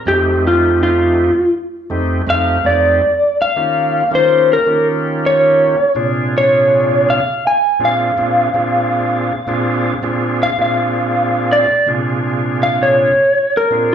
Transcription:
0.06 tonewheel organ F2 A3 C4 D#4 G4, electric slide guitar G4
0.47 electric slide guitar F4
0.83 electric slide guitar F4
1.90 tonewheel organ F2 A3 C4 D#4 G4
2.27 tonewheel organ F2 A3 C4 D#4 G4, electric slide guitar F5
2.64 tonewheel organ F2 A3 C4 D#4 G4, electric slide guitar D5
3.42 electric slide guitar F5
3.56 tonewheel organ D#3 A#3 C#4 F4 G4
4.11 tonewheel organ D#3 A#3 C#4 F4 G4
4.15 electric slide guitar C5
4.53 electric slide guitar A#4
4.66 tonewheel organ D#3 A#3 C#4 F4 G4
5.26 electric slide guitar C#5
5.95 tonewheel organ A#2 C3 D4 F4 G#4
6.38 electric slide guitar C#5
7.10 electric slide guitar F5
7.47 electric slide guitar G#5
7.79 tonewheel organ A#2 C4 D4 F4 G#4
7.85 electric slide guitar F5
8.17 tonewheel organ A#2 C4 D4 F4 G#4
8.54 tonewheel organ A#2 C4 D4 F4 G#4
9.47 tonewheel organ A#2 C4 D4 F4 G#4
10.02 tonewheel organ A#2 C4 D4 F4 G#4
10.43 electric slide guitar F5
10.58 tonewheel organ A#2 C4 D4 F4 G#4, electric slide guitar F5
11.53 electric slide guitar D5
11.86 tonewheel organ A#2 C3 D4 F4 G#4
12.63 electric slide guitar F5
12.83 electric slide guitar C#5
13.57 electric slide guitar A#4
13.70 tonewheel organ A#2 C4 D4 F4 G#4

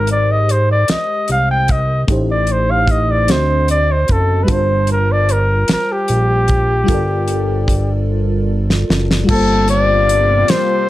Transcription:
Already playing: analog synth bass G#1, fm electric piano G#3 G4 A#4 C5, flugelhorn A#4
0.07 closed hi-hat
0.12 flugelhorn D5
0.32 flugelhorn D#5
0.49 flugelhorn C5, closed hi-hat
0.71 flugelhorn D5
0.88 analog synth bass C2, flugelhorn D#5, snare, closed hi-hat
1.28 analog synth bass C2, flugelhorn F5, closed hi-hat
1.51 flugelhorn G5
1.68 flugelhorn D#5, kick, closed hi-hat
2.07 analog synth bass A1, fm electric piano A3 D#4 G4, kick, closed hi-hat
2.12 fm electric piano C5
2.31 flugelhorn D5
2.47 closed hi-hat
2.52 flugelhorn C5
2.71 flugelhorn F5
2.88 flugelhorn D#5, kick, closed hi-hat
3.11 flugelhorn D5
3.27 analog synth bass D2, fm electric piano D3 C4 F#4, snare, closed hi-hat
3.31 flugelhorn C5, fm electric piano D#5
3.68 flugelhorn D5, closed hi-hat
3.92 flugelhorn C5
4.08 analog synth bass F#1, flugelhorn A4, kick, closed hi-hat
4.43 fm electric piano G3 F4, flugelhorn B4
4.48 analog synth bass G1, fm electric piano A#4 A5, flugelhorn C5, kick, closed hi-hat
4.55 fm electric piano C5
4.87 closed hi-hat
4.92 flugelhorn A#4
5.12 flugelhorn D5
5.29 flugelhorn A#4, closed hi-hat
5.68 analog synth bass A#1, snare, closed hi-hat
5.72 flugelhorn A#4
5.92 flugelhorn G4
6.08 analog synth bass A#1, closed hi-hat
6.48 kick, closed hi-hat
6.84 fm electric piano G3 F4
6.88 analog synth bass G1, fm electric piano A4 A#4, kick, closed hi-hat
6.94 fm electric piano D5
7.28 closed hi-hat
7.68 kick, closed hi-hat
8.70 snare
8.90 analog synth bass F#1, snare
9.11 snare
9.24 fm electric piano G3 F4
9.29 analog synth bass G1, analog synth pad C3 G3 A#3 F4, fm electric piano A#3 A5, flugelhorn A4, kick, crash
9.34 fm electric piano C5
9.68 flugelhorn D5, closed hi-hat
10.09 closed hi-hat
10.48 analog synth bass A#1, flugelhorn C5, snare, closed hi-hat

